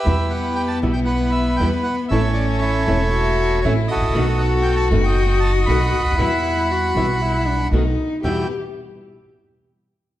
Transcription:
<<
  \new Staff \with { instrumentName = "Bandoneon" } { \time 4/4 \key e \dorian \tempo 4 = 118 << { e''8 fis''8 g''16 a''8 g''16 fis''8 e''8 g''8 fis''8 | e''8 d''8 cis''2 cis''8 dis''8~ | dis''8 fis''8 g''16 a''8 g''8. a''8 b''4~ | b''2. r4 |
g''8 r2. r8 | } \\ { <g' b'>4. r8 b'2 | <a' cis''>4 <e' a'>2 r8 <fis' a'>8~ | <fis' a'>4. r16 dis''4~ dis''16 <dis'' fis''>4~ | <dis'' fis''>2. r4 |
r1 | } >> }
  \new Staff \with { instrumentName = "Cello" } { \time 4/4 \key e \dorian b1 | cis'2 fis'4 e'4 | fis'1 | e'4 fis'4 e'8 d'8 dis'4 |
g'8 r2. r8 | }
  \new Staff \with { instrumentName = "String section" } { \time 4/4 \key e \dorian <g b e'>4. <g b e'>4. <g b e'>8 r8 | <a cis' e'>4. <a cis' e'>4. <a cis' e'>8 r8 | <a b dis'>4. <a b dis'>4. <a b dis'>8 r8 | <g b e'>4. <g b e'>4. <a b dis'>8 r8 |
<g b e'>8 r2. r8 | }
  \new Staff \with { instrumentName = "Nylon-string guitar" } { \time 4/4 \key e \dorian <b, e g b e'>8 r4 <b, e g b e'>8 r4 <b, e g b e'>8 r8 | <e a cis' e'>8 r4 <e a cis' e'>8 r4 <e a cis' e'>8 r8 | <b, dis a b fis'>8 r4 <b, dis a b fis'>8 r4 <b, dis a b fis'>8 r8 | <b, e g b e'>8 r4 <b, e g b e'>8 r4 <b, dis a b fis'>8 r8 |
<e, b, e g b e'>8 r2. r8 | }
  \new Staff \with { instrumentName = "Upright bass" } { \clef bass \time 4/4 \key e \dorian e,4~ e,16. r32 b,,4~ b,,16. r32 e,16. r8 r32 | a,,4~ a,,16. r32 e,,4~ e,,16. r32 a,,16. r16 gis,,32 a,,32 ais,,32 | b,,4~ b,,16. r32 fis,,4~ fis,,16. r32 b,,16. r16 cis,32 d,32 dis,32 | e,4~ e,16. r32 b,,4~ b,,16. r32 b,,16. r8 r32 |
e,8 r2. r8 | }
>>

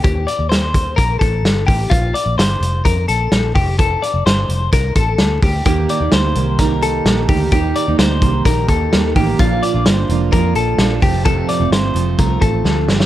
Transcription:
<<
  \new Staff \with { instrumentName = "Clean electric guitar" } { \time 4/4 \key f \mixolydian \tempo 4 = 128 g'8 d''8 c''4 bes'8 a'4 g'8 | f'8 d''8 c''4 bes'8 a'4 g'8 | a'8 d''8 c''4 bes'8 a'4 g'8 | g'8 d''8 c''4 bes'8 a'4 g'8 |
g'8 d''8 c''4 bes'8 a'4 g'8 | f'8 d''8 c''4 bes'8 a'4 g'8 | a'8 d''8 c''4 bes'8 a'4 g'8 | }
  \new Staff \with { instrumentName = "Steel-string acoustic guitar" } { \time 4/4 \key f \mixolydian r1 | r1 | r1 | <ees bes ees' g'>8. <bes ees' g'>8. <ees bes ees' g'>8 <ees bes ees' g'>4 <ees bes ees' g'>8 <ees bes ees' g'>8 |
<ees bes ees' g'>8. <bes ees' g'>8. <ees bes ees' g'>8 <ees bes ees' g'>4 <ees bes ees' g'>8 <ees bes ees' g'>8 | <bes, f bes d' f'>8. <bes d' f'>8. <f bes d' f'>8 <f bes d' f'>4 <f bes d' f'>8 <f a c' f'>8 | <f, c f a c' f'>8. <f a c' f'>8. <f a c' f'>8 <f a c' f'>4 <f a c' f'>8 <f a c' f'>8 | }
  \new Staff \with { instrumentName = "Fingered electric bass" } { \clef bass \time 4/4 \key f \mixolydian ees,8 r16 ees,4~ ees,16 bes,,8 a,,8 g,,8 a,,8 | bes,,8 r16 bes,,16 g,,8 f,,8 f,8 bes,,8 bes,,8 f,,8~ | f,,8 r16 f,,16 g,,8 f,,8 c,8 a,,8 d,8 d,8 | ees,8 r16 ees,16 d,8 c,4. bes,,8 d,8 |
ees,8 r16 ees,16 d,8 c,8 bes,,8 ees,8 ees,8 a,,8 | bes,,8 r16 bes,,16 g,,8 f,,8 f,8 bes,,8 bes,,8 f,,8~ | f,,8 r16 f,,16 g,,8 f,,8 c,8 a,,8 d,8 g,,8 | }
  \new DrumStaff \with { instrumentName = "Drums" } \drummode { \time 4/4 <hh bd>8 hh8 <hh sn>8 <hh bd>8 <hh bd>8 <hh bd>8 <hh sn>8 <hho bd>8 | <hh bd>8 hh8 <hh sn>8 hh8 <hh bd>8 hh8 <hh sn>8 <hho bd>8 | <hh bd>8 hh8 <hh sn>8 hh8 <hh bd sn>8 <hh bd>8 <hh sn>8 <hho bd>8 | <hh bd>8 hh8 <hh sn>8 hh8 <hh bd sn>8 hh8 <hh sn>8 <hho bd>8 |
<hh bd>8 hh8 <hh sn>8 <hh bd>8 <hh bd sn>8 <hh bd>8 <hh sn>8 <hho bd>8 | <hh bd>8 hh8 <hh sn>8 hh8 <hh bd>8 hh8 <hh sn>8 <hho bd>8 | <hh bd>8 hh8 <hh sn>8 hh8 <hh bd>8 <hh bd>8 sn8 sn16 sn16 | }
>>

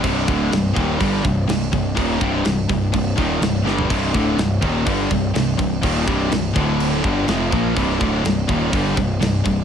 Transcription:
<<
  \new Staff \with { instrumentName = "Distorted electric guitar" } { \clef bass \time 4/4 \key c \minor \tempo 4 = 124 <c, g, c>8 <d, a, d>8 <c, g,>8 <ees, bes, ees>8 <g, d g>8 <c, g,>8 <c, g,>8 <c, g,>8 | <ees, bes, ees>8 <c, g, c>8 <c, g,>8 <c, g,>8 <c, g,>8 <ees, bes, ees>8 <c, g,>8 <g, d g>8 | <c, g, c>8 <d, a, d>8 <c, g,>8 <ees, bes, ees>8 <g, d g>8 <c, g,>8 <c, g,>8 <c, g,>8 | <ees, bes, ees>8 <c, g, c>8 <c, g,>8 <d, a, d>4 <g, d g>8 <f, c f>8 <bes, f bes>8 |
<c, g, c>8 <d, a, d>8 <c, g,>8 <ees, bes, ees>8 <g, d g>8 <c, g,>8 <c, g,>8 <c, g,>8 | }
  \new Staff \with { instrumentName = "Distorted electric guitar" } { \clef bass \time 4/4 \key c \minor <c, g, c>8 <d, a, d>8 <c, g,>8 <ees, bes, ees>8 <g, d g>8 <c, g,>8 <c, g,>8 <c, g,>8 | <ees, bes, ees>8 <c, g, c>8 <c, g,>8 <c, g,>8 <c, g,>8 <ees, bes, ees>8 <c, g,>8 <g, d g>8 | <c, g, c>8 <d, a, d>8 <c, g,>8 <ees, bes, ees>8 <g, d g>8 <c, g,>8 <c, g,>8 <c, g,>8 | <ees, bes, ees>8 <c, g, c>8 <c, g,>8 <d, a, d>4 <g, d g>8 <f, c f>8 <bes, f bes>8 |
<c, g, c>8 <d, a, d>8 <c, g,>8 <ees, bes, ees>8 <g, d g>8 <c, g,>8 <c, g,>8 <c, g,>8 | }
  \new Staff \with { instrumentName = "Overdriven electric guitar" } { \clef bass \time 4/4 \key c \minor <c, g, c>8 <d, a, d>8 <c, g,>8 <ees, bes, ees>8 <g, d g>8 <c, g,>8 <c, g,>8 <c, g,>8 | <ees, bes, ees>8 <c, g, c>8 <c, g,>8 <c, g,>8 <c, g,>8 <ees, bes, ees>8 <c, g,>8 <g, d g>8 | <c, g, c>8 <d, a, d>8 <c, g,>8 <ees, bes, ees>8 <g, d g>8 <c, g,>8 <c, g,>8 <c, g,>8 | <ees, bes, ees>8 <c, g, c>8 <c, g,>8 <d, a, d>4 <g, d g>8 <f, c f>8 <bes, f bes>8 |
<c, g, c>8 <d, a, d>8 <c, g,>8 <ees, bes, ees>8 <g, d g>8 <c, g,>8 <c, g,>8 <c, g,>8 | }
  \new Staff \with { instrumentName = "Picked electric bass" } { \clef bass \time 4/4 \key c \minor c,,8 d,,8 c,,8 ees,,8 g,,8 c,,8 c,,8 c,,8 | ees,,8 c,,8 c,,8 c,,8 c,,8 ees,,8 c,,8 g,,8 | c,,8 d,,8 c,,8 ees,,8 g,,8 c,,8 c,,8 c,,8 | ees,,8 c,,8 c,,8 d,,4 g,,8 f,,8 bes,,8 |
c,,8 d,,8 c,,8 ees,,8 g,,8 c,,8 c,,8 c,,8 | }
  \new DrumStaff \with { instrumentName = "Drums" } \drummode { \time 4/4 <cymc bd>8 <cymc bd>8 <cymc sn>8 <cymc bd>8 <cymc bd>8 <cymc bd>8 <cymc sn>8 <cymc bd>8 | <cymc bd>8 <cymc bd>8 <cymc sn>8 <cymc bd>8 <cymc bd>8 <cymc bd>8 <cymc sn>8 sn16 tomfh16 | <cymc bd>8 bd8 <cymc sn>8 <cymc bd>8 <cymc bd>8 <cymc bd>8 <cymc sn>8 <cymc bd>8 | <cymc bd>8 bd8 <cymc sn>8 <cymc bd>8 cymc8 <cymc bd>8 <cymc sn>8 <cymc bd>8 |
<cymc bd>8 <cymc bd>8 <cymc sn>8 <cymc bd>8 <cymc bd>8 <cymc bd>8 <cymc sn>8 <cymc bd>8 | }
>>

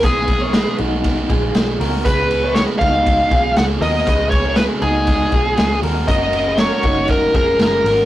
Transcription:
<<
  \new Staff \with { instrumentName = "Lead electric guitar" } { \time 4/4 \key des \mixolydian \tempo 4 = 119 aes'4. r2 r8 | ces''4 des''8 f''4. ges''8 ees''8~ | ees''8 des''8 ces''8 aes'2 r8 | ees''4 des''4 bes'8 bes'8 bes'4 | }
  \new Staff \with { instrumentName = "Clean electric guitar" } { \time 4/4 \key des \mixolydian <aes' ces''>8. <bes' des''>16 <aes' ces''>8 <ees' ges'>4 <f' aes'>4 <ges' bes'>8 | <aes' ces''>8. <bes' des''>16 <aes' ces''>8 <ees' ges'>4 <f' aes'>4 <ges' bes'>8 | <aes' ces''>8. <bes' des''>16 <aes' ces''>8 <ees' ges'>4 <f' aes'>4 <ges' bes'>8 | <ges' bes'>8. <aes' ces''>16 <ges' bes'>8 <ees' ges'>4 <f' aes'>4 <ges' bes'>8 | }
  \new Staff \with { instrumentName = "Overdriven electric guitar" } { \time 4/4 \key des \mixolydian <ces ees ges ces' ees' aes'>8 <ges ces' ees' aes'>8 <ces ees ges ces' ees' aes'>8 <ges ces' ees' aes'>8 <ges ces' ees' aes'>8 <ges ces' ees' aes'>8 <ces ees ges ces' ees' aes'>8 <ges ces' ees' aes'>8 | <des aes ces' ges' aes'>8 <ces' ges' aes'>8 <des aes ces' ges' aes'>8 <ces' ges' aes'>8 <aes ces' ges' aes'>8 <ces' ges' aes'>8 <des aes ces' ges' aes'>8 <ces' ges' aes'>8 | <des aes ces' ges' aes'>8 <ces' ges' aes'>8 <des aes ces' ges' aes'>8 <ces' ges' aes'>8 <aes ces' ges' aes'>8 <ces' ges' aes'>8 <des aes ces' ges' aes'>8 <ces' ges' aes'>8 | <ges des' f' bes'>8 <des' f' bes'>8 <ges des' f' bes'>8 <des' f' bes'>8 <ges des' f' bes'>8 <des' f' bes'>8 <ges des' f' bes'>8 <des' f' bes'>8 | }
  \new Staff \with { instrumentName = "Picked electric bass" } { \clef bass \time 4/4 \key des \mixolydian ces,4~ ces,16 r16 ces,4 bes,,8 ces,8 des,8 | des,4~ des,16 r16 des,4 ces,8 des,8 ees,8 | des,4~ des,16 r16 des,4 ces,8 des,8 ees,8 | ges,,4~ ges,,16 r16 ges,,4 f,,8 ges,,8 aes,,8 | }
  \new DrumStaff \with { instrumentName = "Drums" } \drummode { \time 4/4 <hhp bd cymr>8 <bd cymr>8 <cymr sn>8 cymr8 <bd cymr sn>8 <bd cymr>8 <cymr sn>8 <hho cymr>8 | <hhp bd cymr>8 cymr8 <cymr sn>8 <bd cymr>8 <bd cymr>8 <bd cymr>8 <cymr sn>8 <hho cymr>8 | <hhp bd cymr>8 <bd cymr>8 <cymr sn>8 cymr8 <bd cymr sn>8 <bd cymr>8 <cymr sn>8 <hho cymr>8 | <hhp bd cymr>8 cymr8 <cymr sn>8 <bd cymr>8 <bd cymr sn>8 <bd cymr>8 <cymr sn>8 <hho cymr>8 | }
>>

